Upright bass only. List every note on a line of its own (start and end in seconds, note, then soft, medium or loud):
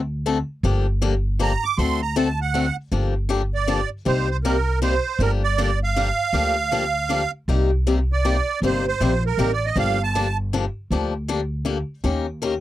0.00 0.41 D2 medium
0.63 1.55 G1 medium
1.78 2.69 D2 medium
2.92 3.83 G1 medium
4.06 4.97 C2 medium
5.19 6.10 G1 medium
6.33 7.25 D2 medium
7.48 8.39 C2 medium
8.62 8.92 G1 medium
9.00 9.33 A#1 medium
9.37 9.70 A1 medium
9.76 10.67 G1 medium
10.91 11.81 D2 medium
12.04 12.60 D#2 medium